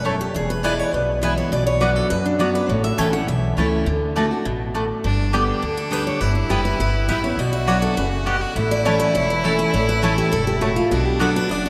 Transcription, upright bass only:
Already playing: E1
0.35 E1
0.93 B1
1.52 B1
2.11 F#2
2.69 A1
2.98 A1
3.28 B1
3.57 C#2
3.86 D2
4.46 A1
5.04 G1
5.63 D2
6.21 G1
6.50 F#1
6.79 G1
7.08 A1
7.38 B1
7.97 F#1
8.56 A1
9.15 E1
9.74 A1
10.33 E1
10.91 B1
11.50 F#1

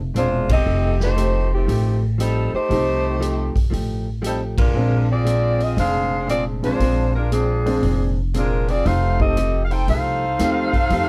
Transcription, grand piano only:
2.70 G3 A3 C4 D#4
4.75 F3 G#3 C4 D4
6.63 F3 G#3 C4 D4
6.80 F3 C4 D4
7.66 F3 G#3 C4 D4
9.20 G3 A3 C4 D#4
10.39 G3 A3 C4 D#4
10.91 G3 A3 C4 D#4

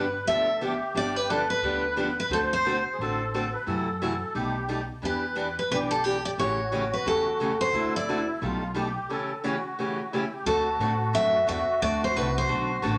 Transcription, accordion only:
Already playing: B4
0.28 A4
0.61 G4
1.28 B4
2.32 C5
2.93 G#4
3.01 A4
3.34 A4
3.53 B4
3.67 A4
3.99 A4
4.35 G4
5.04 B4
5.73 G4
6.39 F#4
7.73 E4
8.43 F4
8.76 G4
9.09 A4
9.43 F#4
10.11 E4
10.33 G4
10.46 F#4

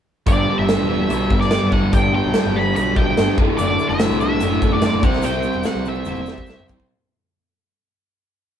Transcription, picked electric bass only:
0.27 G1
0.59 G1
0.80 E1
1.11 B1
1.30 G1
1.62 G1
1.84 G1
1.93 G1
2.24 B1
2.45 G1
2.77 B1
3.18 G1
3.38 F#1
3.60 F#1
3.90 F#1
4.10 C2
4.41 F#1
4.61 F#1
4.93 F#1
5.03 C2
5.55 E1
5.75 C2
6.06 E1
6.47 C2
6.70 C2

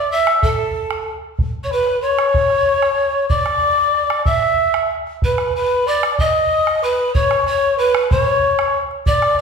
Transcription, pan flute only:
Already playing: D5
0.12 E5
0.43 A4
1.64 C#5
1.73 B4
2.02 C#5
3.30 D5
4.26 E5
5.24 B4
5.56 B4
5.87 D5
6.20 D#5
6.83 B4
7.14 C#5
7.47 C#5
7.79 B4
8.12 C#5
9.07 D5

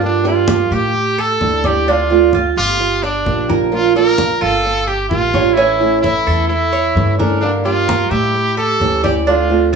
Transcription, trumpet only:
0.04 D4
0.27 F4
0.74 G4
1.20 A4
1.66 G4
1.90 F4
2.58 F4
3.03 D4
3.74 F4
3.96 A#4
4.42 A4
4.88 G4
5.09 F4
5.54 E4
6.01 E4
6.48 E4
7.18 D4
7.41 D4
7.65 F4
8.10 G4
8.57 A4
9.04 G4
9.28 F4

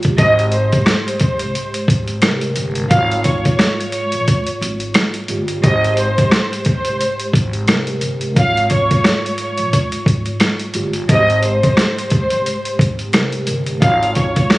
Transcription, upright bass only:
Already playing: G1
0.18 G#1
1.41 C2
1.88 G#1
2.57 G1
2.91 G#1
4.14 A#1
4.61 G#1
5.29 G1
5.64 G#1
6.87 C2
7.33 G#1
8.02 G1
8.36 G#1
9.59 A#1
10.06 G#1
10.75 G1
11.09 G#1
12.32 C2
12.79 G#1
13.48 G1
13.82 G#1

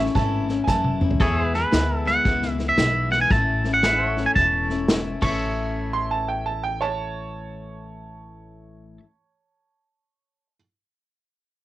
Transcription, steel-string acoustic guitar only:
Already playing: A3 C#4 E4
0.15 A2 E3 A3 C#4 E4
0.49 A3 C#4 E4
0.67 E3 A3 C#4 E4
1.01 A3 C#4 E4
1.20 E2 B2 E3 G#3 B3 E4
1.54 E3 G#3 B3 E4
1.71 E3 G#3 B3 E4
2.05 E3 G#3 B3 E4
2.25 E2 B2 E3 G#3 B3 E4
2.58 E3 G#3 B3 E4
2.77 E3 G#3 B3 E4
3.10 E3 G#3 B3 E4
3.30 A2 E3 A3 C#4 E4
3.64 A3 C#4 E4
3.83 E3 A3 C#4 E4
4.17 A3 C#4 E4
4.36 A2 E3 A3 C#4 E4
4.70 A3 C#4 E4
4.88 E3 A3 C#4 E4
5.21 A2 E3 A3
5.25 C#4 E4

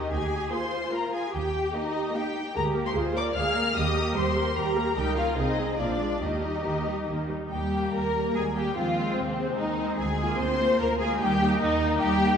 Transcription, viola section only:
Already playing: D#3
0.52 A#3 F4
0.93 A#3 F4
1.74 A#3 G4
2.14 A#3 G4
2.55 G#3 G#4
2.75 A#3 A#4
2.95 G#3 G#4
3.15 A#3 A#4
3.35 G#3 G#4
3.55 A#3 A#4
3.75 G3 G4
3.96 A#3 A#4
4.15 G3 G4
4.37 A#3 A#4
4.57 G3 G4
4.77 A#3 A#4
4.97 G3 D#4
5.17 A#3 C#4
5.37 C4 D#4
5.58 G#3 C4
5.78 F3 A#3
5.99 G#3 D4
6.21 D#3 A#3
6.43 G3 D#4
6.65 D#3 A#3
6.87 G3 D#4
7.08 D#3 A#3
7.29 G3 D#4
7.73 G3 A#3
8.14 G3 A#3
8.55 G3 A#3
8.75 G#3 C4
8.96 G#3 C4
9.37 G#3 C4
9.78 G#3 C4
10.20 A#3 F4
10.59 A#3 F4
11.00 A#3 F4
11.20 A#3 D#4
11.41 A#3 D#4
11.82 A#3 D#4
12.21 A#3 D#4

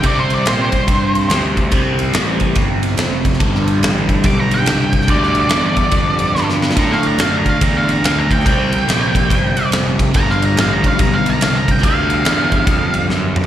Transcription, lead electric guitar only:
0.06 D5
0.19 C5
0.34 D5
0.48 C5
0.62 C5
4.26 D6
4.40 A#5
4.54 G5
5.10 D5
5.24 D5
5.40 D5
5.53 D5
5.66 D5
6.80 A#5
6.92 F5
7.07 A#5
7.20 F5
7.36 A#5
7.49 F5
7.63 A#5
7.77 F5
7.91 A#5
8.06 F5
8.19 A#5
8.32 G5
8.46 G5
10.16 A#5
10.31 F5
10.45 A#5
10.60 F5
10.73 A#5
10.88 F5
11.01 A#5
11.15 F5
11.30 A#5
11.43 F5
11.58 A#5
11.71 G5
11.85 F5

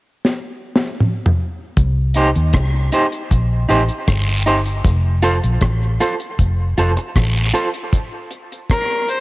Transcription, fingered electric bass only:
1.78 C2
2.36 D#2
2.54 C2
3.32 A#1
3.70 A1
4.08 G1
4.85 F1
5.44 A#1
5.62 A1
6.39 F1
6.78 F1
7.16 A1

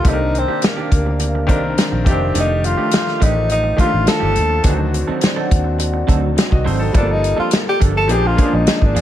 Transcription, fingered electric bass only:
0.05 C2
0.92 D2
1.49 C2
1.92 A#1
2.06 F1
2.35 F1
2.78 muted fingered electric bass stroke
3.22 A1
3.78 muted fingered electric bass stroke
3.93 A1
4.22 G1
4.37 D#2
4.64 D2
5.08 muted fingered electric bass stroke
5.52 D#2
6.09 D2
6.52 C2
6.66 G#1
6.94 G1
7.39 muted fingered electric bass stroke
7.82 G1
8.10 A#1
8.53 A#1
8.82 G#1
8.95 E2

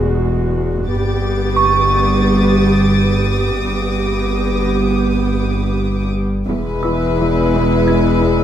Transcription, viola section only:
Already playing: G#3 F#4
0.89 B3 G4
3.64 B3 G4
6.49 G#3 E4

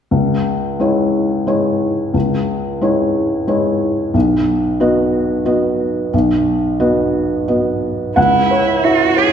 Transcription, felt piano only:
0.11 C#2
0.80 G#3 E4 C#5
1.47 G#3 E4 C#5
2.14 C#2
2.81 G#3 E4 C#5
3.47 G#3 E4 C#5
4.14 B1
4.80 B3 F#4 D#5
5.46 B3 F#4 D#5
6.13 B1
6.80 B3 F#4 D#5
7.48 B3 F#4 D#5
8.16 C#2 F#5
8.51 C#5
8.83 E4 E5
9.16 C#5

